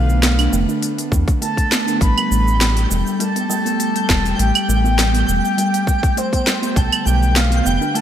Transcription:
Already playing: B1 D3 A3 B3 F5
0.10 shaker
0.23 B3, snare, open hi-hat, shaker
0.39 D4, open hi-hat, claves
0.53 F1 A3, shaker
0.69 D4, shaker
0.83 open hi-hat, shaker
0.99 open hi-hat, shaker
1.12 E2 A3, kick, shaker
1.28 kick, open hi-hat, shaker
1.42 A3 A5, open hi-hat, shaker
1.57 kick, open hi-hat, shaker
1.71 B3, snare, shaker
1.87 D4, open hi-hat, shaker
2.01 A1 G3 G5 B5, kick, open hi-hat, shaker
2.17 B3, open hi-hat, claves
2.31 A1, shaker
2.48 shaker
2.60 G3, snare, open hi-hat, shaker
2.77 open hi-hat
2.90 E1 G3, shaker
3.07 shaker
3.20 A3 A5, open hi-hat, shaker
3.36 B3, open hi-hat, shaker
3.50 G3, shaker
3.65 B3, open hi-hat, shaker
3.80 open hi-hat, shaker
3.96 open hi-hat
4.09 E1 G3, kick, snare, shaker
4.26 open hi-hat, shaker
4.39 A1 G3 G5, open hi-hat, shaker
4.55 open hi-hat, claves
4.68 A1 A3, shaker
4.84 B3, shaker
4.98 G3, snare, open hi-hat, shaker
5.14 B3, open hi-hat
5.28 E1, shaker
5.45 shaker
5.58 G3, open hi-hat, shaker
5.74 open hi-hat, shaker
5.87 G3, kick, shaker
6.03 kick, open hi-hat, shaker
6.17 A3 C5, open hi-hat, shaker
6.33 B3, kick, open hi-hat
6.47 G3, snare, shaker
6.62 B3, open hi-hat, shaker
6.76 B1 D3 B3 A5, kick, open hi-hat, shaker
6.92 open hi-hat, claves
7.06 B1 A3 G5, shaker
7.23 shaker
7.36 A3 F5, snare, open hi-hat, shaker
7.52 open hi-hat
7.65 F1 B3 G5, shaker
7.81 D4, shaker
7.95 A3 A5, open hi-hat, shaker

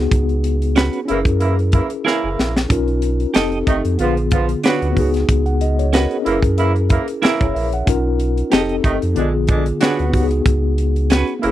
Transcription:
Already playing: B3 D#4 F#4 G#4
0.12 C#2, kick, closed hi-hat
0.29 closed hi-hat
0.44 closed hi-hat
0.62 closed hi-hat
0.76 C#4 F#4 B4, snare, closed hi-hat
0.93 closed hi-hat
1.05 C#3 E3 A#3 C#4 E4, closed hi-hat
1.10 F#1 G#4 A#4
1.25 F#2, kick, closed hi-hat
1.40 C#3 E3 A#3 E4, closed hi-hat
1.59 closed hi-hat
1.72 C#3 E3 A#3 E4, kick, closed hi-hat
1.90 closed hi-hat
2.05 C#3 E3 A#3 E4 G#4 A#4, snare
2.24 F#1
2.39 A#1, snare
2.56 snare
2.69 B1 C#4 D#4 F4 A#4, kick, closed hi-hat
2.88 closed hi-hat
3.02 closed hi-hat
3.20 closed hi-hat
3.34 F1 C4 D#4 G4 A4 D#5, snare, closed hi-hat
3.52 closed hi-hat
3.67 G1 C3 D#3 A3 D#4, kick, closed hi-hat
3.85 F2, closed hi-hat
3.98 A#1 D3 F3 B3 F4 G#4, closed hi-hat
4.17 closed hi-hat
4.31 D3 F3 B3 F4, kick, closed hi-hat
4.49 closed hi-hat
4.64 C#3 F#3 B3 D4 F#4 G#4 B4, snare, closed hi-hat
4.82 D2, closed hi-hat
4.92 B3 D#4
4.97 C#2 F#4 G#4, kick, open hi-hat
5.14 snare, closed hi-hat
5.29 C#2, kick, closed hi-hat
5.46 F#5, closed hi-hat
5.61 D#5, closed hi-hat
5.79 C#5, closed hi-hat
5.93 C#4 F#4 A#4 B4, snare, closed hi-hat
6.11 G#4, closed hi-hat
6.22 C#3 E3 A#3 C#4 E4, closed hi-hat
6.26 F#1 G#4 A#4
6.42 F#2, kick, closed hi-hat
6.58 C#3 E3 A#3 E4, closed hi-hat
6.76 closed hi-hat
6.89 C#3 E3 A#3 E4, kick, closed hi-hat
7.08 closed hi-hat
7.22 C#3 E3 A#3 E4 G#4 A#4, snare, closed hi-hat
7.41 F#1 C#5, kick, closed hi-hat
7.55 A#1 E5, open hi-hat
7.73 F#5, closed hi-hat
7.86 B1 C#4 D#4 F4 A#4, kick, closed hi-hat
8.20 closed hi-hat
8.38 closed hi-hat
8.51 F1 C4 D#4 G4 G#4 A4 D#5, snare, closed hi-hat
8.60 A4
8.69 closed hi-hat
8.84 G1 C3 D#3 A3 D#4, kick, closed hi-hat
9.02 F2, closed hi-hat
9.15 A#1 B2 D3 G#3 B3 D4 F4 G#4, closed hi-hat
9.47 B2 D3 G#3 D4, kick, closed hi-hat
9.66 closed hi-hat
9.81 C#3 F#3 B3 D4 F#4 G#4 B4, snare, closed hi-hat
9.99 D2, closed hi-hat
10.09 B3 D#4
10.13 C#2 F#4 G4, kick, open hi-hat
10.23 G#4
10.31 closed hi-hat
10.46 C#2, kick, closed hi-hat
10.78 closed hi-hat
10.96 closed hi-hat
11.10 C#4 F#4 B4, snare, closed hi-hat
11.28 closed hi-hat
11.39 C#3 E3 A#3 C#4 E4, closed hi-hat
11.43 F#1 E4 G#4

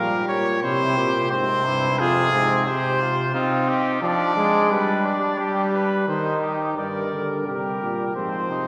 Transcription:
Already playing: A#2 G3 G4 A#4
0.29 A#2 C#5
0.62 C3 E4 C5
0.97 A#2 G4
1.31 G#2 C3 C4 C5
1.65 G2 E4
1.99 F2 F4 G#4
2.32 G#2 C4
2.66 C3 G4 C5
3.01 F4
3.34 C4 D#4 F4
3.69 G4
4.02 F3 D4 D5
4.37 G#3
4.71 G3 D4 B4
5.06 D5
5.39 G3 G4
5.74 B4
6.08 D#3 D#4 C5
6.42 G4
6.77 G2 G3 A#4 D5
7.11 D3
7.46 C3 G3 G4 A#4
7.81 A#2
8.15 G#2 F3 C4 C5
8.49 C3 D#4

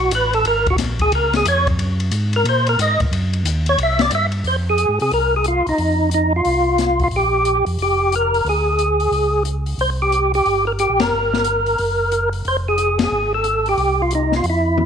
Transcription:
Already playing: B1 F#4
0.11 A1, hi-hat pedal, ride
0.15 B4
0.33 A4, ride
0.44 G#1 A#4, ride
0.66 F#4, kick, ride
0.76 A#1, snare, hi-hat pedal, ride
0.99 G#4, kick, ride
1.12 C#2 A#4, ride
1.33 G#4, snare, ride
1.45 F2 C#5, hi-hat pedal, ride
1.67 kick, ride
1.79 F#2, ride
2.00 ride
2.11 G#2, hi-hat pedal, ride
2.33 A#4, ride
2.44 A#2, ride
2.49 C5
2.67 A#4, ride
2.78 G#2 D#5, hi-hat pedal, ride
3.00 G#2, kick, ride
3.11 F#2, ride
3.33 ride
3.44 D#2, hi-hat pedal, ride
3.66 C#5, ride
3.78 C2, ride
3.83 E5
3.99 D5, snare, ride
4.11 G2, hi-hat pedal, ride
4.15 E5
4.32 ride
4.44 F2 C5, open hi-hat
4.70 G#4
4.78 closed hi-hat
4.89 G#2
5.00 C3 G#4, open hi-hat
5.11 C2 A#4, open hi-hat
5.36 G#4
5.44 F4, closed hi-hat
5.67 C2 D#4, open hi-hat
5.78 F2, open hi-hat
6.11 D#4, closed hi-hat
6.36 F4
6.45 C2, open hi-hat
6.78 snare, closed hi-hat
7.00 kick, open hi-hat
7.04 F4
7.11 A#1, open hi-hat
7.16 G4
7.45 closed hi-hat
7.66 F2, open hi-hat
7.78 F1, open hi-hat
7.82 G4
8.12 A#4, closed hi-hat
8.34 open hi-hat
8.45 D2, open hi-hat
8.49 G#4
8.79 closed hi-hat
9.00 open hi-hat
9.11 C#2, open hi-hat
9.45 closed hi-hat
9.66 open hi-hat
9.78 C2 C5, open hi-hat
10.02 G4
10.12 closed hi-hat
10.34 G4, open hi-hat
10.45 G1, open hi-hat
10.67 A#4
10.79 G4, closed hi-hat
10.89 A#1
11.00 F#1 A#4, snare, ride
11.12 G1
11.34 snare
11.44 closed hi-hat
11.66 open hi-hat
11.78 F#1, open hi-hat
12.12 closed hi-hat
12.33 open hi-hat
12.45 F1 C5, open hi-hat
12.68 G#4
12.78 closed hi-hat
12.99 snare, ride
13.04 G#4
13.11 G#1
13.34 A4
13.44 closed hi-hat
13.66 G4, open hi-hat
13.77 C2, open hi-hat
14.02 F4
14.11 closed hi-hat
14.15 D#4
14.32 snare
14.36 F4
14.43 F2, open hi-hat
14.50 E4
14.78 high tom

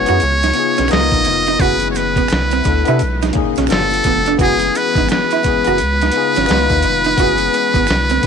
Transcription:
Already playing: E3 G#3 B3 C#4 E4 F#4 G#4 C#5
0.06 F#2 B3 C#4 E4 F#4, closed hi-hat, maracas
0.10 G#4
0.20 C#2 C#3 F4, closed hi-hat, maracas
0.43 D#4, snare, closed hi-hat, maracas
0.54 B3 D#4, muted clean electric guitar stroke, closed hi-hat
0.58 F4 G#4
0.77 B1 C#4, snare, closed hi-hat, maracas
0.88 D#3 B3 D#4 F4 A#4 D#5, finger snap, closed hi-hat, maracas
0.93 C#2 A4, snare
1.00 A#4
1.11 A#1, kick, closed hi-hat, maracas
1.24 F1, muted clean electric guitar stroke, closed hi-hat, maracas
1.46 D#4, closed hi-hat, maracas
1.59 F#1 E3 G#3 B3 C#4 E4 F#4 B4, kick, closed hi-hat, maracas
1.63 G#4
1.80 closed hi-hat, maracas
1.91 C#5, maracas
1.96 B4, muted clean electric guitar stroke, closed hi-hat
2.16 B3, kick, closed hi-hat, maracas
2.28 C2 D3 A3 E4, finger snap, closed hi-hat, maracas
2.33 snare
2.51 C4, closed hi-hat, maracas
2.63 D2 B3 D4 E4, muted clean electric guitar stroke, kick, closed hi-hat, maracas
2.68 A4
2.85 B3 D4 E4, closed hi-hat, maracas
2.89 C3 A4
2.99 B1 A#2 C#3 G#3 D#4, closed hi-hat, maracas
3.22 D#4, snare, closed hi-hat, maracas
3.33 A#3 C#4 D#4, muted clean electric guitar stroke, kick, closed hi-hat
3.38 G#4
3.56 B1 C#4, snare, closed hi-hat, maracas
3.67 F3 A3 B3 D4 F4 G4, finger snap, closed hi-hat, maracas
3.72 G1 A4, muted clean electric guitar stroke, snare
3.90 closed hi-hat, maracas
4.03 F1 B3, kick, closed hi-hat, maracas
4.26 D4, closed hi-hat, maracas
4.38 F#1 E3 G#3 B3 C#4 E4 F#4, kick, closed hi-hat, maracas
4.42 G#4
4.59 closed hi-hat, maracas
4.74 B4, muted clean electric guitar stroke, closed hi-hat, maracas
4.95 G#1 D#4, kick, closed hi-hat, maracas
5.09 B4, finger snap, snare, closed hi-hat, maracas
5.31 E4, closed hi-hat, maracas
5.43 F#1 B3 C#4 E4, muted clean electric guitar stroke, kick, closed hi-hat, maracas
5.48 G#4
5.64 F#1 B3 C#4 E4 F#4, closed hi-hat, maracas
5.69 A#4
5.78 C#2 C#3 G#3 F4, closed hi-hat, maracas
6.01 D#4, snare, closed hi-hat, maracas
6.11 B3 D#4, closed hi-hat
6.16 F4 G#4, muted clean electric guitar stroke
6.35 G#1 C#4, snare, closed hi-hat, maracas
6.46 D#3 G#3 B3 D#4, finger snap, closed hi-hat, maracas
6.50 C#2 B3 F4 B4, snare
6.69 D#2, kick, closed hi-hat, maracas
6.82 F1, muted clean electric guitar stroke, closed hi-hat, maracas
7.04 D#4, closed hi-hat, maracas
7.17 F#1 E3 G#3 B3 C#4 E4 F#4, kick, closed hi-hat, maracas
7.22 G#4
7.38 closed hi-hat, maracas
7.53 muted clean electric guitar stroke, closed hi-hat, maracas
7.74 G#1 B3, kick, closed hi-hat, maracas
7.87 C2 D3 A3 E4, finger snap, snare, closed hi-hat, maracas
8.10 C4, closed hi-hat, maracas
8.21 B3 D4, kick, closed hi-hat

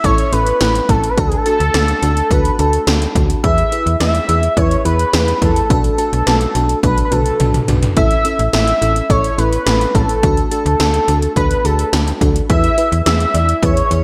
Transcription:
0.04 A1 C#4 E4 A4 C#5, kick, closed hi-hat
0.18 closed hi-hat
0.32 A1 C#4 E4 A4 B4, closed hi-hat
0.47 closed hi-hat
0.61 A1 C#4 E4 A4, snare, closed hi-hat
0.75 closed hi-hat
0.89 A1 C#4 E4 A4, kick, closed hi-hat
1.04 closed hi-hat
1.09 B4
1.17 D2 D4 F#4 A4, kick, closed hi-hat
1.28 G#4, closed hi-hat
1.37 A4
1.46 D4 F#4 A4, closed hi-hat
1.60 D2, closed hi-hat
1.74 D2 D4 F#4 A4, snare, closed hi-hat
1.88 closed hi-hat
2.02 D2 D4 F#4 A4, closed hi-hat
2.17 closed hi-hat
2.31 D2 D4 F#4 A4 B4, kick, closed hi-hat
2.45 closed hi-hat
2.59 D2 D4 F#4 A4, closed hi-hat
2.73 closed hi-hat
2.87 D2 D4 F#4 A4, snare, closed hi-hat
3.02 closed hi-hat
3.15 D2 D4 F#4 A4, kick, closed hi-hat
3.30 closed hi-hat
3.43 E2 E4 G#4 B4 E5, kick, closed hi-hat
3.58 closed hi-hat
3.72 E4 G#4 B4, closed hi-hat
3.86 E2, closed hi-hat
4.00 E2 E4 G#4 B4 E5, snare, closed hi-hat
4.15 closed hi-hat
4.29 E2 E4 G#4 B4, closed hi-hat
4.43 closed hi-hat
4.57 E2 E4 G#4 B4 C#5, kick, closed hi-hat
4.71 closed hi-hat
4.85 E2 E4 G#4 B4, closed hi-hat
4.99 closed hi-hat
5.13 E2 E4 G#4 B4, snare, closed hi-hat
5.28 closed hi-hat
5.42 E2 E4 G#4 A4 B4, kick, closed hi-hat
5.56 closed hi-hat
5.70 B1 D4 F#4 B4, kick, closed hi-hat
5.84 closed hi-hat
5.98 D4 F#4 A4 B4, closed hi-hat
6.13 B1, closed hi-hat
6.26 B1 D4 F#4 B4, snare, closed hi-hat
6.41 closed hi-hat
6.55 B1 D4 F#4 B4, closed hi-hat
6.69 closed hi-hat
6.83 B1 D4 F#4 B4, kick, closed hi-hat, high tom
6.98 closed hi-hat
7.05 B4
7.11 B1 D4 F#4 A4 B4, closed hi-hat, mid tom
7.26 closed hi-hat
7.40 B1 D4 F#4 B4, closed hi-hat, mid tom
7.54 closed hi-hat, mid tom
7.68 B1 D4 F#4 B4, closed hi-hat, floor tom
7.83 closed hi-hat, floor tom
7.96 A1 C#4 E4 A4 E5, kick, closed hi-hat
8.11 closed hi-hat
8.25 C#4 E4 A4, closed hi-hat
8.39 A1, closed hi-hat
8.53 A1 C#4 E4 A4 E5, snare, closed hi-hat
8.67 closed hi-hat
8.81 A1 C#4 E4 A4, closed hi-hat
8.96 closed hi-hat
9.10 A1 C#4 E4 A4 C#5, kick, closed hi-hat
9.24 closed hi-hat
9.38 A1 C#4 E4 A4 B4, closed hi-hat
9.53 closed hi-hat
9.66 A1 C#4 E4 A4, snare, closed hi-hat
9.81 closed hi-hat
9.94 A1 C#4 E4 A4, kick, closed hi-hat
10.09 closed hi-hat
10.23 D2 D4 F#4 A4, kick, closed hi-hat
10.37 closed hi-hat
10.51 D4 F#4 A4, closed hi-hat
10.66 D2, closed hi-hat
10.80 D2 D4 F#4 A4, snare, closed hi-hat
10.94 closed hi-hat
11.08 D2 D4 F#4 A4, closed hi-hat
11.22 closed hi-hat
11.36 D2 D4 F#4 A4 B4, kick, closed hi-hat
11.51 closed hi-hat
11.65 D2 D4 F#4 G#4 A4, closed hi-hat
11.79 closed hi-hat
11.93 D2 D4 F#4 A4, snare, closed hi-hat
12.08 closed hi-hat
12.21 D2 D4 F#4 A4, kick, closed hi-hat
12.36 closed hi-hat
12.49 E2 E4 G#4 B4 E5, kick, closed hi-hat
12.64 closed hi-hat
12.78 E4 G#4 B4, closed hi-hat
12.92 E2, closed hi-hat
13.06 E2 E4 G#4 B4 E5, snare, closed hi-hat
13.20 closed hi-hat
13.34 E2 E4 G#4 D5, closed hi-hat
13.49 closed hi-hat
13.63 E2 E4 G#4 B4 C#5, kick, closed hi-hat
13.77 closed hi-hat
13.91 E2 E4 G#4 B4, closed hi-hat

